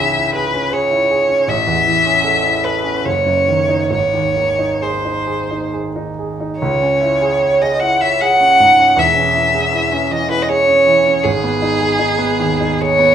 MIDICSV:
0, 0, Header, 1, 3, 480
1, 0, Start_track
1, 0, Key_signature, 4, "minor"
1, 0, Tempo, 752823
1, 949, Time_signature, 3, 2, 24, 8
1, 1436, Tempo, 802139
1, 1916, Tempo, 858369
1, 2396, Tempo, 898204
1, 3836, Tempo, 809717
1, 4316, Tempo, 784314
1, 5276, Tempo, 756620
1, 7196, Tempo, 790514
1, 7886, End_track
2, 0, Start_track
2, 0, Title_t, "Violin"
2, 0, Program_c, 0, 40
2, 0, Note_on_c, 0, 76, 83
2, 218, Note_off_c, 0, 76, 0
2, 222, Note_on_c, 0, 71, 75
2, 467, Note_on_c, 0, 73, 77
2, 477, Note_off_c, 0, 71, 0
2, 946, Note_on_c, 0, 76, 82
2, 956, Note_off_c, 0, 73, 0
2, 1670, Note_on_c, 0, 71, 68
2, 1679, Note_off_c, 0, 76, 0
2, 1913, Note_on_c, 0, 73, 71
2, 1922, Note_off_c, 0, 71, 0
2, 2392, Note_off_c, 0, 73, 0
2, 2396, Note_on_c, 0, 73, 75
2, 2879, Note_on_c, 0, 72, 58
2, 2887, Note_off_c, 0, 73, 0
2, 3367, Note_off_c, 0, 72, 0
2, 3827, Note_on_c, 0, 73, 74
2, 4435, Note_on_c, 0, 75, 68
2, 4444, Note_off_c, 0, 73, 0
2, 4552, Note_on_c, 0, 78, 78
2, 4561, Note_off_c, 0, 75, 0
2, 4680, Note_on_c, 0, 76, 80
2, 4689, Note_off_c, 0, 78, 0
2, 4800, Note_on_c, 0, 78, 95
2, 4809, Note_off_c, 0, 76, 0
2, 5275, Note_on_c, 0, 76, 78
2, 5285, Note_off_c, 0, 78, 0
2, 5992, Note_on_c, 0, 75, 82
2, 6002, Note_off_c, 0, 76, 0
2, 6114, Note_off_c, 0, 75, 0
2, 6117, Note_on_c, 0, 71, 78
2, 6186, Note_on_c, 0, 75, 62
2, 6195, Note_off_c, 0, 71, 0
2, 6230, Note_on_c, 0, 73, 92
2, 6239, Note_off_c, 0, 75, 0
2, 6706, Note_on_c, 0, 68, 91
2, 6715, Note_off_c, 0, 73, 0
2, 7678, Note_on_c, 0, 73, 106
2, 7688, Note_off_c, 0, 68, 0
2, 7886, Note_off_c, 0, 73, 0
2, 7886, End_track
3, 0, Start_track
3, 0, Title_t, "Grand piano"
3, 0, Program_c, 1, 0
3, 0, Control_c, 1, 64, 127
3, 0, Note_on_c, 1, 37, 54
3, 0, Note_on_c, 1, 44, 45
3, 0, Note_on_c, 1, 52, 43
3, 0, Note_on_c, 1, 61, 46
3, 0, Note_on_c, 1, 68, 47
3, 66, Note_off_c, 1, 61, 0
3, 103, Note_on_c, 1, 64, 46
3, 182, Note_off_c, 1, 68, 0
3, 227, Note_on_c, 1, 68, 47
3, 301, Note_off_c, 1, 64, 0
3, 344, Note_on_c, 1, 61, 44
3, 422, Note_off_c, 1, 68, 0
3, 462, Note_on_c, 1, 68, 43
3, 540, Note_off_c, 1, 61, 0
3, 580, Note_on_c, 1, 64, 47
3, 658, Note_off_c, 1, 68, 0
3, 705, Note_on_c, 1, 68, 44
3, 776, Note_off_c, 1, 64, 0
3, 819, Note_on_c, 1, 61, 44
3, 898, Note_off_c, 1, 68, 0
3, 923, Note_off_c, 1, 37, 0
3, 942, Note_on_c, 1, 33, 58
3, 944, Note_off_c, 1, 61, 0
3, 959, Control_c, 1, 64, 0
3, 960, Note_off_c, 1, 52, 0
3, 963, Note_off_c, 1, 44, 0
3, 1065, Note_on_c, 1, 40, 46
3, 1075, Control_c, 1, 64, 127
3, 1187, Note_on_c, 1, 52, 41
3, 1262, Note_off_c, 1, 40, 0
3, 1313, Note_on_c, 1, 61, 47
3, 1384, Note_off_c, 1, 52, 0
3, 1431, Note_on_c, 1, 69, 44
3, 1505, Note_off_c, 1, 61, 0
3, 1545, Note_on_c, 1, 64, 48
3, 1621, Note_off_c, 1, 69, 0
3, 1669, Note_on_c, 1, 69, 44
3, 1740, Note_off_c, 1, 64, 0
3, 1788, Note_on_c, 1, 61, 42
3, 1865, Note_off_c, 1, 69, 0
3, 1888, Note_off_c, 1, 33, 0
3, 1913, Note_off_c, 1, 61, 0
3, 1914, Note_on_c, 1, 30, 53
3, 1925, Control_c, 1, 64, 0
3, 2007, Control_c, 1, 64, 127
3, 2032, Note_on_c, 1, 42, 39
3, 2150, Note_on_c, 1, 51, 42
3, 2223, Note_off_c, 1, 42, 0
3, 2271, Note_on_c, 1, 63, 42
3, 2345, Note_off_c, 1, 51, 0
3, 2380, Note_off_c, 1, 30, 0
3, 2392, Note_on_c, 1, 32, 51
3, 2394, Note_off_c, 1, 63, 0
3, 2407, Control_c, 1, 64, 0
3, 2507, Control_c, 1, 64, 127
3, 2514, Note_on_c, 1, 39, 37
3, 2635, Note_on_c, 1, 51, 38
3, 2706, Note_off_c, 1, 39, 0
3, 2755, Note_on_c, 1, 63, 43
3, 2828, Note_off_c, 1, 51, 0
3, 2880, Note_on_c, 1, 68, 40
3, 2951, Note_off_c, 1, 63, 0
3, 3001, Note_on_c, 1, 63, 38
3, 3075, Note_off_c, 1, 68, 0
3, 3120, Note_on_c, 1, 68, 39
3, 3197, Note_off_c, 1, 63, 0
3, 3248, Note_on_c, 1, 63, 36
3, 3316, Note_off_c, 1, 68, 0
3, 3370, Note_on_c, 1, 68, 38
3, 3439, Note_off_c, 1, 63, 0
3, 3490, Note_on_c, 1, 63, 42
3, 3559, Note_off_c, 1, 68, 0
3, 3612, Note_on_c, 1, 68, 39
3, 3679, Note_off_c, 1, 63, 0
3, 3727, Note_on_c, 1, 63, 38
3, 3794, Note_off_c, 1, 68, 0
3, 3812, Note_off_c, 1, 32, 0
3, 3837, Note_off_c, 1, 63, 0
3, 3844, Control_c, 1, 64, 0
3, 3844, Note_on_c, 1, 37, 56
3, 3941, Control_c, 1, 64, 127
3, 3960, Note_on_c, 1, 61, 44
3, 4076, Note_on_c, 1, 64, 43
3, 4150, Note_off_c, 1, 61, 0
3, 4198, Note_on_c, 1, 68, 50
3, 4267, Note_off_c, 1, 64, 0
3, 4319, Note_on_c, 1, 73, 46
3, 4389, Note_off_c, 1, 68, 0
3, 4438, Note_on_c, 1, 68, 48
3, 4513, Note_off_c, 1, 73, 0
3, 4563, Note_on_c, 1, 64, 44
3, 4633, Note_off_c, 1, 68, 0
3, 4682, Note_on_c, 1, 73, 45
3, 4755, Note_off_c, 1, 64, 0
3, 4804, Note_on_c, 1, 68, 49
3, 4874, Note_off_c, 1, 73, 0
3, 4920, Note_on_c, 1, 61, 45
3, 4994, Note_off_c, 1, 68, 0
3, 5040, Note_on_c, 1, 44, 47
3, 5109, Note_off_c, 1, 61, 0
3, 5157, Note_on_c, 1, 61, 45
3, 5228, Note_off_c, 1, 44, 0
3, 5255, Note_off_c, 1, 37, 0
3, 5258, Note_on_c, 1, 28, 55
3, 5263, Note_on_c, 1, 40, 58
3, 5274, Note_off_c, 1, 61, 0
3, 5286, Control_c, 1, 64, 0
3, 5384, Note_on_c, 1, 61, 42
3, 5403, Control_c, 1, 64, 127
3, 5507, Note_on_c, 1, 64, 46
3, 5584, Note_off_c, 1, 61, 0
3, 5629, Note_on_c, 1, 68, 49
3, 5706, Note_off_c, 1, 64, 0
3, 5748, Note_on_c, 1, 64, 50
3, 5827, Note_off_c, 1, 68, 0
3, 5869, Note_on_c, 1, 61, 47
3, 5946, Note_off_c, 1, 64, 0
3, 5988, Note_on_c, 1, 52, 47
3, 6065, Note_off_c, 1, 61, 0
3, 6105, Note_on_c, 1, 64, 50
3, 6183, Note_off_c, 1, 52, 0
3, 6232, Note_on_c, 1, 68, 50
3, 6301, Note_off_c, 1, 64, 0
3, 6350, Note_on_c, 1, 61, 46
3, 6424, Note_off_c, 1, 68, 0
3, 6467, Note_on_c, 1, 52, 48
3, 6544, Note_off_c, 1, 61, 0
3, 6591, Note_on_c, 1, 61, 47
3, 6663, Note_off_c, 1, 52, 0
3, 6681, Note_off_c, 1, 28, 0
3, 6684, Note_off_c, 1, 40, 0
3, 6710, Note_on_c, 1, 32, 61
3, 6714, Note_off_c, 1, 61, 0
3, 6724, Control_c, 1, 64, 0
3, 6826, Control_c, 1, 64, 127
3, 6830, Note_on_c, 1, 59, 47
3, 6948, Note_on_c, 1, 63, 51
3, 7023, Note_off_c, 1, 59, 0
3, 7068, Note_on_c, 1, 68, 52
3, 7142, Note_off_c, 1, 63, 0
3, 7184, Note_on_c, 1, 63, 56
3, 7260, Note_off_c, 1, 68, 0
3, 7302, Note_on_c, 1, 59, 52
3, 7380, Note_off_c, 1, 63, 0
3, 7429, Note_on_c, 1, 39, 48
3, 7505, Note_off_c, 1, 59, 0
3, 7555, Note_on_c, 1, 63, 48
3, 7630, Note_off_c, 1, 39, 0
3, 7674, Note_on_c, 1, 68, 47
3, 7749, Note_off_c, 1, 63, 0
3, 7790, Note_on_c, 1, 59, 51
3, 7863, Note_off_c, 1, 68, 0
3, 7886, Note_off_c, 1, 32, 0
3, 7886, Note_off_c, 1, 59, 0
3, 7886, End_track
0, 0, End_of_file